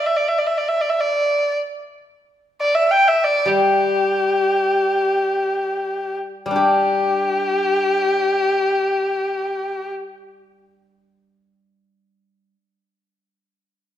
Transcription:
0, 0, Header, 1, 3, 480
1, 0, Start_track
1, 0, Tempo, 500000
1, 13416, End_track
2, 0, Start_track
2, 0, Title_t, "Erhu"
2, 0, Program_c, 0, 110
2, 60, Note_on_c, 0, 76, 49
2, 159, Note_on_c, 0, 74, 47
2, 174, Note_off_c, 0, 76, 0
2, 270, Note_on_c, 0, 76, 48
2, 284, Note_off_c, 0, 74, 0
2, 368, Note_on_c, 0, 74, 46
2, 383, Note_off_c, 0, 76, 0
2, 450, Note_on_c, 0, 76, 47
2, 465, Note_off_c, 0, 74, 0
2, 555, Note_on_c, 0, 74, 47
2, 570, Note_off_c, 0, 76, 0
2, 653, Note_on_c, 0, 76, 54
2, 668, Note_off_c, 0, 74, 0
2, 779, Note_on_c, 0, 74, 50
2, 793, Note_off_c, 0, 76, 0
2, 861, Note_on_c, 0, 76, 47
2, 875, Note_off_c, 0, 74, 0
2, 966, Note_on_c, 0, 74, 56
2, 980, Note_off_c, 0, 76, 0
2, 1501, Note_off_c, 0, 74, 0
2, 2504, Note_on_c, 0, 74, 59
2, 2638, Note_on_c, 0, 76, 61
2, 2652, Note_off_c, 0, 74, 0
2, 2797, Note_on_c, 0, 79, 64
2, 2811, Note_off_c, 0, 76, 0
2, 2959, Note_on_c, 0, 76, 60
2, 2974, Note_off_c, 0, 79, 0
2, 3112, Note_on_c, 0, 74, 66
2, 3126, Note_off_c, 0, 76, 0
2, 3332, Note_on_c, 0, 67, 58
2, 3346, Note_off_c, 0, 74, 0
2, 5922, Note_off_c, 0, 67, 0
2, 6320, Note_on_c, 0, 67, 54
2, 9512, Note_off_c, 0, 67, 0
2, 13416, End_track
3, 0, Start_track
3, 0, Title_t, "Guzheng"
3, 0, Program_c, 1, 107
3, 3317, Note_on_c, 1, 55, 46
3, 6188, Note_off_c, 1, 55, 0
3, 6199, Note_on_c, 1, 55, 33
3, 6247, Note_on_c, 1, 62, 32
3, 6294, Note_on_c, 1, 67, 34
3, 10135, Note_off_c, 1, 67, 0
3, 10815, Note_off_c, 1, 62, 0
3, 12022, Note_off_c, 1, 55, 0
3, 13416, End_track
0, 0, End_of_file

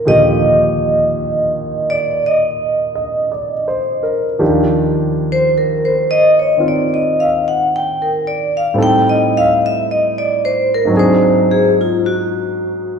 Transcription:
0, 0, Header, 1, 3, 480
1, 0, Start_track
1, 0, Key_signature, -3, "major"
1, 0, Tempo, 1090909
1, 17, Time_signature, 4, 2, 24, 8
1, 3857, Tempo, 1071429
1, 5750, End_track
2, 0, Start_track
2, 0, Title_t, "Vibraphone"
2, 0, Program_c, 0, 11
2, 36, Note_on_c, 0, 75, 83
2, 836, Note_on_c, 0, 74, 73
2, 856, Note_off_c, 0, 75, 0
2, 984, Note_off_c, 0, 74, 0
2, 996, Note_on_c, 0, 75, 61
2, 1784, Note_off_c, 0, 75, 0
2, 2342, Note_on_c, 0, 72, 74
2, 2416, Note_off_c, 0, 72, 0
2, 2454, Note_on_c, 0, 70, 51
2, 2574, Note_on_c, 0, 72, 56
2, 2597, Note_off_c, 0, 70, 0
2, 2687, Note_on_c, 0, 75, 85
2, 2739, Note_off_c, 0, 72, 0
2, 2790, Note_off_c, 0, 75, 0
2, 2813, Note_on_c, 0, 73, 53
2, 2891, Note_off_c, 0, 73, 0
2, 2939, Note_on_c, 0, 74, 53
2, 3053, Note_on_c, 0, 75, 55
2, 3079, Note_off_c, 0, 74, 0
2, 3169, Note_on_c, 0, 77, 60
2, 3217, Note_off_c, 0, 75, 0
2, 3270, Note_off_c, 0, 77, 0
2, 3291, Note_on_c, 0, 78, 66
2, 3369, Note_off_c, 0, 78, 0
2, 3414, Note_on_c, 0, 79, 68
2, 3529, Note_on_c, 0, 70, 45
2, 3555, Note_off_c, 0, 79, 0
2, 3640, Note_on_c, 0, 74, 66
2, 3694, Note_off_c, 0, 70, 0
2, 3744, Note_off_c, 0, 74, 0
2, 3771, Note_on_c, 0, 77, 61
2, 3847, Note_off_c, 0, 77, 0
2, 3884, Note_on_c, 0, 79, 90
2, 4004, Note_on_c, 0, 75, 66
2, 4030, Note_off_c, 0, 79, 0
2, 4129, Note_on_c, 0, 77, 71
2, 4172, Note_off_c, 0, 75, 0
2, 4230, Note_off_c, 0, 77, 0
2, 4257, Note_on_c, 0, 76, 77
2, 4332, Note_off_c, 0, 76, 0
2, 4371, Note_on_c, 0, 75, 53
2, 4492, Note_on_c, 0, 74, 65
2, 4515, Note_off_c, 0, 75, 0
2, 4611, Note_on_c, 0, 72, 73
2, 4657, Note_off_c, 0, 74, 0
2, 4711, Note_off_c, 0, 72, 0
2, 4743, Note_on_c, 0, 70, 62
2, 4815, Note_off_c, 0, 70, 0
2, 4855, Note_on_c, 0, 72, 66
2, 5088, Note_on_c, 0, 68, 60
2, 5156, Note_off_c, 0, 72, 0
2, 5189, Note_off_c, 0, 68, 0
2, 5221, Note_on_c, 0, 65, 56
2, 5294, Note_off_c, 0, 65, 0
2, 5334, Note_on_c, 0, 66, 66
2, 5750, Note_off_c, 0, 66, 0
2, 5750, End_track
3, 0, Start_track
3, 0, Title_t, "Grand piano"
3, 0, Program_c, 1, 0
3, 0, Control_c, 1, 64, 127
3, 24, Note_on_c, 1, 39, 43
3, 29, Note_on_c, 1, 46, 42
3, 29, Note_on_c, 1, 53, 45
3, 31, Note_on_c, 1, 50, 37
3, 32, Note_on_c, 1, 67, 51
3, 1300, Note_on_c, 1, 75, 39
3, 1459, Note_on_c, 1, 74, 35
3, 1553, Note_off_c, 1, 75, 0
3, 1618, Note_on_c, 1, 72, 40
3, 1773, Note_off_c, 1, 74, 0
3, 1773, Note_on_c, 1, 70, 39
3, 1873, Note_off_c, 1, 72, 0
3, 1926, Note_off_c, 1, 39, 0
3, 1926, Note_off_c, 1, 53, 0
3, 1931, Note_off_c, 1, 67, 0
3, 1932, Note_on_c, 1, 51, 34
3, 1932, Note_on_c, 1, 53, 43
3, 1933, Note_on_c, 1, 39, 46
3, 1934, Note_on_c, 1, 62, 37
3, 1937, Note_on_c, 1, 67, 49
3, 1946, Control_c, 1, 64, 0
3, 1947, Note_off_c, 1, 46, 0
3, 1948, Note_off_c, 1, 50, 0
3, 2029, Control_c, 1, 64, 127
3, 2030, Note_off_c, 1, 70, 0
3, 2885, Note_off_c, 1, 51, 0
3, 2891, Note_on_c, 1, 51, 33
3, 2895, Note_on_c, 1, 60, 35
3, 2904, Note_on_c, 1, 65, 40
3, 3845, Note_on_c, 1, 45, 47
3, 3846, Note_off_c, 1, 60, 0
3, 3847, Note_on_c, 1, 55, 43
3, 3849, Note_off_c, 1, 39, 0
3, 3849, Note_off_c, 1, 53, 0
3, 3850, Note_off_c, 1, 51, 0
3, 3850, Note_off_c, 1, 62, 0
3, 3851, Note_off_c, 1, 67, 0
3, 3853, Note_on_c, 1, 60, 41
3, 3856, Note_off_c, 1, 65, 0
3, 3859, Control_c, 1, 64, 0
3, 3862, Note_on_c, 1, 63, 42
3, 3864, Note_on_c, 1, 69, 53
3, 3938, Control_c, 1, 64, 127
3, 4791, Note_on_c, 1, 44, 46
3, 4801, Note_on_c, 1, 54, 47
3, 4808, Note_off_c, 1, 60, 0
3, 4813, Note_off_c, 1, 45, 0
3, 4814, Note_off_c, 1, 55, 0
3, 4815, Note_on_c, 1, 60, 41
3, 4821, Note_off_c, 1, 63, 0
3, 4822, Note_off_c, 1, 69, 0
3, 4823, Control_c, 1, 64, 0
3, 4829, Note_on_c, 1, 62, 42
3, 4843, Note_on_c, 1, 68, 58
3, 4909, Control_c, 1, 64, 127
3, 5750, Note_off_c, 1, 44, 0
3, 5750, Note_off_c, 1, 54, 0
3, 5750, Note_off_c, 1, 60, 0
3, 5750, Note_off_c, 1, 62, 0
3, 5750, Note_off_c, 1, 68, 0
3, 5750, End_track
0, 0, End_of_file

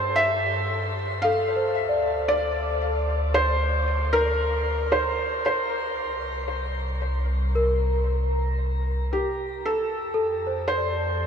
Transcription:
0, 0, Header, 1, 4, 480
1, 0, Start_track
1, 0, Tempo, 1056338
1, 568, Time_signature, 4, 2, 24, 8
1, 2486, Tempo, 1036269
1, 5170, End_track
2, 0, Start_track
2, 0, Title_t, "Celesta"
2, 0, Program_c, 0, 8
2, 565, Note_on_c, 0, 69, 47
2, 642, Control_c, 0, 64, 127
2, 710, Note_on_c, 0, 72, 42
2, 858, Note_on_c, 0, 74, 45
2, 1036, Note_off_c, 0, 69, 0
2, 1168, Note_off_c, 0, 72, 0
2, 1303, Note_off_c, 0, 74, 0
2, 2494, Control_c, 0, 64, 0
2, 2587, Control_c, 0, 64, 127
2, 3451, Note_on_c, 0, 70, 55
2, 3918, Note_off_c, 0, 70, 0
2, 4416, Control_c, 0, 64, 0
2, 4485, Control_c, 0, 64, 127
2, 4650, Note_on_c, 0, 69, 65
2, 4801, Note_on_c, 0, 72, 49
2, 4943, Note_on_c, 0, 74, 47
2, 5117, Note_off_c, 0, 69, 0
2, 5170, Note_off_c, 0, 72, 0
2, 5170, Note_off_c, 0, 74, 0
2, 5170, End_track
3, 0, Start_track
3, 0, Title_t, "Felt piano"
3, 0, Program_c, 1, 0
3, 0, Note_on_c, 1, 72, 76
3, 71, Note_on_c, 1, 76, 85
3, 82, Note_off_c, 1, 72, 0
3, 554, Note_on_c, 1, 77, 82
3, 575, Note_off_c, 1, 76, 0
3, 1038, Note_on_c, 1, 74, 82
3, 1057, Note_off_c, 1, 77, 0
3, 1519, Note_on_c, 1, 72, 83
3, 1540, Note_off_c, 1, 74, 0
3, 1876, Note_on_c, 1, 70, 88
3, 1897, Note_off_c, 1, 72, 0
3, 2235, Note_on_c, 1, 72, 73
3, 2254, Note_off_c, 1, 70, 0
3, 2473, Note_off_c, 1, 72, 0
3, 2480, Note_on_c, 1, 72, 64
3, 3427, Note_off_c, 1, 72, 0
3, 4179, Note_on_c, 1, 67, 69
3, 4422, Note_off_c, 1, 67, 0
3, 4424, Note_on_c, 1, 69, 78
3, 4897, Note_on_c, 1, 72, 90
3, 4910, Note_off_c, 1, 69, 0
3, 5170, Note_off_c, 1, 72, 0
3, 5170, End_track
4, 0, Start_track
4, 0, Title_t, "Synth drone"
4, 0, Program_c, 2, 95
4, 0, Note_on_c, 2, 43, 76
4, 540, Note_off_c, 2, 43, 0
4, 557, Note_on_c, 2, 38, 76
4, 2459, Note_off_c, 2, 38, 0
4, 2483, Note_on_c, 2, 36, 80
4, 4384, Note_off_c, 2, 36, 0
4, 4407, Note_on_c, 2, 41, 77
4, 5170, Note_off_c, 2, 41, 0
4, 5170, End_track
0, 0, End_of_file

